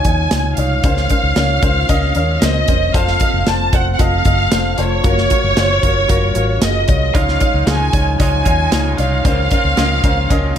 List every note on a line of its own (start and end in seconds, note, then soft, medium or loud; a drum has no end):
0.00 0.84 C#3 medium
0.00 2.91 C#3 medium
0.00 0.82 G#3 medium
0.00 0.05 D#4 medium
0.00 0.82 D#4 medium
0.00 0.05 F4 medium
0.00 9.21 F4 medium
0.00 0.84 A#4 medium
0.00 0.06 C#5 loud
0.00 0.54 G#5 medium
0.05 0.27 D#2 medium
0.05 0.30 D#4 medium
0.05 0.30 F4 medium
0.05 0.30 C#5 medium
0.05 kick medium
0.05 closed hi-hat medium
0.31 0.53 C#2 medium
0.31 0.56 D#4 medium
0.31 0.56 F4 medium
0.31 0.57 C#5 medium
0.31 snare loud
0.31 closed hi-hat loud
0.57 0.79 C2 medium
0.57 0.82 D#4 medium
0.57 0.83 F4 medium
0.57 0.83 C#5 medium
0.57 2.42 F5 loud
0.57 closed hi-hat medium
0.84 1.05 C#2 loud
0.84 1.59 C#3 medium
0.84 2.92 A#3 medium
0.84 5.00 C4 medium
0.84 1.08 C#4 medium
0.84 1.09 A#4 medium
0.84 1.09 C5 loud
0.84 kick loud
0.84 closed hi-hat medium
0.97 snare soft
1.09 1.34 C#4 medium
1.09 1.35 A#4 medium
1.09 1.35 C5 medium
1.09 kick medium
1.09 closed hi-hat medium
1.23 1.34 C#2 medium
1.36 1.58 C#2 medium
1.36 1.61 C#4 medium
1.36 1.61 A#4 medium
1.36 1.62 C#5 medium
1.36 snare medium
1.36 closed hi-hat medium
1.63 1.84 C#2 loud
1.63 1.87 C#4 medium
1.63 1.87 A#4 medium
1.63 1.88 C5 medium
1.63 kick loud
1.63 closed hi-hat medium
1.89 2.11 C#2 medium
1.89 2.13 C#4 loud
1.89 2.14 A#4 loud
1.89 2.14 D#5 loud
1.89 kick medium
1.89 closed hi-hat medium
2.15 2.37 D#2 medium
2.15 2.40 C#4 medium
2.15 2.40 A#4 medium
2.15 2.41 C#5 medium
2.15 closed hi-hat medium
2.41 2.63 C#2 medium
2.41 2.66 C#4 medium
2.41 2.66 A#4 medium
2.41 2.67 C5 medium
2.41 2.95 D#5 loud
2.41 snare loud
2.41 closed hi-hat loud
2.68 2.90 E1 medium
2.68 2.93 C#4 medium
2.68 2.93 A#4 medium
2.68 2.93 C5 medium
2.68 kick medium
2.68 closed hi-hat medium
2.94 3.16 F1 medium
2.94 5.02 A3 medium
2.94 3.19 F4 medium
2.94 3.19 A4 medium
2.94 3.19 C5 loud
2.94 3.47 F5 loud
2.94 kick loud
2.94 closed hi-hat medium
3.07 snare soft
3.20 3.45 F4 medium
3.20 3.45 A4 medium
3.20 3.46 D#5 medium
3.20 kick medium
3.20 closed hi-hat medium
3.34 3.45 F1 medium
3.46 3.69 F1 medium
3.46 3.71 F4 medium
3.46 3.72 A4 medium
3.46 3.72 C5 medium
3.46 3.74 A5 loud
3.46 snare medium
3.46 closed hi-hat medium
3.73 3.95 F1 medium
3.73 3.98 F4 medium
3.73 3.98 A4 medium
3.73 3.98 C5 medium
3.73 3.92 F#5 loud
3.73 kick medium
3.73 closed hi-hat medium
3.93 4.00 F#5 medium
3.99 4.21 F1 medium
3.99 4.24 F4 medium
3.99 4.24 A4 medium
3.99 4.25 D#5 medium
3.99 4.79 F5 loud
3.99 kick medium
3.99 closed hi-hat medium
4.25 4.47 F#1 medium
4.25 4.50 F4 medium
4.25 4.51 A4 medium
4.25 4.51 D#5 medium
4.25 kick medium
4.25 closed hi-hat medium
4.51 4.74 F1 medium
4.51 4.76 F4 medium
4.51 4.77 A4 medium
4.51 4.77 C5 medium
4.51 snare loud
4.51 closed hi-hat loud
4.78 5.00 F1 medium
4.78 5.02 F4 medium
4.78 5.03 A4 medium
4.78 5.03 C5 medium
4.78 6.63 C#5 loud
4.78 closed hi-hat medium
5.04 5.26 F#1 medium
5.04 7.13 F#3 medium
5.04 7.13 C#4 medium
5.04 5.29 F4 medium
5.04 5.29 F#4 medium
5.04 5.29 A#4 loud
5.04 7.13 A#4 medium
5.04 kick loud
5.04 closed hi-hat medium
5.18 snare soft
5.30 5.55 F4 medium
5.30 5.55 F#4 medium
5.30 5.56 A#4 medium
5.30 kick medium
5.30 closed hi-hat medium
5.44 5.55 F#1 medium
5.57 5.79 F#1 medium
5.57 5.81 F4 medium
5.57 5.82 F#4 medium
5.57 5.82 C5 medium
5.57 snare loud
5.57 closed hi-hat medium
5.83 6.05 F#1 medium
5.83 6.07 F4 medium
5.83 6.08 F#4 medium
5.83 6.08 A#4 medium
5.83 kick medium
5.83 closed hi-hat medium
6.09 6.31 F#1 medium
6.09 6.34 F4 loud
6.09 6.34 F#4 medium
6.09 6.34 A#4 loud
6.09 kick medium
6.09 closed hi-hat medium
6.35 6.57 G#1 medium
6.35 6.60 F4 medium
6.35 6.60 F#4 medium
6.35 6.61 A#4 medium
6.35 closed hi-hat medium
6.62 6.84 F#1 medium
6.62 6.86 F4 medium
6.62 6.86 F#4 medium
6.62 6.87 G#4 medium
6.62 7.12 D#5 medium
6.62 snare loud
6.62 closed hi-hat loud
6.87 7.10 C2 medium
6.87 7.13 F4 medium
6.87 7.13 F#4 medium
6.87 7.13 C#5 medium
6.87 kick loud
6.87 closed hi-hat medium
7.14 7.36 C#2 loud
7.14 7.41 C#3 medium
7.14 7.90 C#3 medium
7.14 10.58 C#3 medium
7.14 7.41 F3 medium
7.14 7.41 G#3 medium
7.14 9.23 C#4 medium
7.14 7.39 D#4 medium
7.14 9.23 D#4 medium
7.14 7.40 D#4 medium
7.14 7.39 F4 medium
7.14 7.40 C#5 loud
7.14 7.68 F5 medium
7.14 kick loud
7.14 closed hi-hat medium
7.28 snare soft
7.40 7.66 G#3 soft
7.40 7.65 D#4 medium
7.40 7.67 D#4 medium
7.40 7.67 F4 medium
7.40 7.66 F4 medium
7.40 7.66 C#5 medium
7.40 kick medium
7.40 closed hi-hat medium
7.54 7.65 C#2 medium
7.66 7.89 C#2 medium
7.66 8.20 C#3 medium
7.66 8.18 F3 medium
7.66 8.19 G#3 medium
7.66 7.91 D#4 medium
7.66 8.20 D#4 medium
7.66 7.92 F4 medium
7.66 8.21 F4 medium
7.66 7.92 G#4 medium
7.66 8.17 G#5 loud
7.66 snare loud
7.66 closed hi-hat medium
7.93 8.15 C#2 medium
7.93 8.18 D#4 medium
7.93 8.18 F4 medium
7.93 8.18 C#5 medium
7.93 kick medium
7.93 closed hi-hat medium
8.19 8.42 C#2 loud
8.19 8.46 F3 medium
8.19 8.46 G#3 medium
8.19 8.44 D#4 medium
8.19 8.45 D#4 medium
8.19 8.45 F4 medium
8.19 8.44 F4 medium
8.19 8.45 C#5 loud
8.19 8.95 G#5 loud
8.19 kick medium
8.19 closed hi-hat medium
8.45 8.68 D#2 medium
8.45 8.71 G#3 soft
8.45 8.70 D#4 medium
8.45 8.72 D#4 medium
8.45 8.72 F4 medium
8.45 8.71 F4 medium
8.45 8.71 C#5 medium
8.45 kick medium
8.45 closed hi-hat medium
8.71 8.94 C#2 medium
8.71 8.98 C#3 medium
8.71 8.98 F3 medium
8.71 8.99 G#3 medium
8.71 8.97 D#4 medium
8.71 8.98 D#4 medium
8.71 8.97 F4 medium
8.71 8.96 F4 medium
8.71 8.98 C#5 medium
8.71 snare loud
8.71 closed hi-hat loud
8.97 9.20 C2 medium
8.97 9.25 G#3 soft
8.97 9.23 D#4 medium
8.97 9.25 D#4 soft
8.97 9.24 F4 medium
8.97 9.24 C#5 medium
8.97 10.58 F5 loud
8.97 closed hi-hat medium
9.24 9.47 C#2 loud
9.24 9.51 C#3 medium
9.24 10.00 C#3 medium
9.24 9.51 F3 medium
9.24 9.51 A#3 medium
9.24 10.58 A#3 medium
9.24 10.58 C4 medium
9.24 9.50 C4 medium
9.24 9.49 C#4 loud
9.24 10.58 F4 medium
9.24 9.49 F4 medium
9.24 9.50 A#4 medium
9.24 9.50 C5 loud
9.24 kick loud
9.24 closed hi-hat medium
9.50 9.76 A#3 soft
9.50 9.77 C4 medium
9.50 9.76 C#4 medium
9.50 9.77 F4 medium
9.50 9.76 A#4 medium
9.50 9.76 C#5 medium
9.50 kick medium
9.50 closed hi-hat medium
9.65 9.75 C#2 medium
9.77 9.99 C#2 medium
9.77 10.30 C#3 medium
9.77 10.29 F3 medium
9.77 10.29 A#3 medium
9.77 10.31 C4 medium
9.77 10.02 C#4 medium
9.77 10.31 F4 loud
9.77 10.03 A#4 medium
9.77 10.03 D#5 medium
9.77 snare loud
9.77 closed hi-hat medium
10.04 10.25 C#2 medium
10.04 10.29 C#4 medium
10.04 10.29 A#4 medium
10.04 10.29 C5 medium
10.04 10.29 A#5 medium
10.04 kick loud
10.04 closed hi-hat medium
10.29 10.52 C#2 loud
10.29 10.56 F3 medium
10.29 10.57 A#3 medium
10.29 10.56 C4 medium
10.29 10.55 C#4 loud
10.29 10.55 F4 medium
10.29 10.55 A#4 loud
10.29 10.56 D#5 loud
10.29 10.55 G#5 medium
10.29 kick medium
10.29 closed hi-hat medium